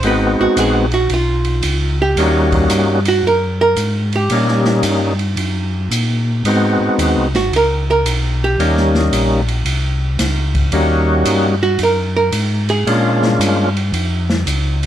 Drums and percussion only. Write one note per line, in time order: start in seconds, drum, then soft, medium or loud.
0.03 ride medium
0.57 hi-hat pedal medium
0.57 ride medium
0.92 ride soft
1.10 ride medium
1.45 ride soft
1.63 hi-hat pedal medium
1.63 ride medium
2.17 ride medium
2.52 kick medium
2.52 ride medium
2.70 hi-hat pedal medium
2.70 ride medium
3.05 ride medium
3.76 hi-hat pedal medium
3.76 ride medium
4.13 ride soft
4.30 ride medium
4.48 snare soft
4.65 snare soft
4.83 hi-hat pedal medium
4.83 ride medium
5.19 ride soft
5.37 ride medium
5.91 hi-hat pedal medium
5.91 ride medium
6.45 ride medium
6.99 hi-hat pedal medium
6.99 ride medium
7.35 snare soft
7.35 ride soft
7.53 ride medium
8.06 hi-hat pedal medium
8.06 ride medium
8.60 ride medium
8.77 snare soft
8.95 snare soft
9.13 hi-hat pedal medium
9.13 ride medium
9.48 ride soft
9.66 ride medium
10.19 snare soft
10.19 hi-hat pedal medium
10.19 ride medium
10.55 kick medium
10.55 ride soft
10.72 ride medium
11.25 hi-hat pedal medium
11.25 ride medium
11.79 ride medium
12.32 hi-hat pedal medium
12.32 ride medium
12.69 ride medium
12.87 ride medium
13.23 snare medium
13.41 hi-hat pedal medium
13.41 ride medium
13.77 ride soft
13.94 ride medium
14.30 snare medium
14.47 hi-hat pedal medium
14.47 ride medium
14.83 ride medium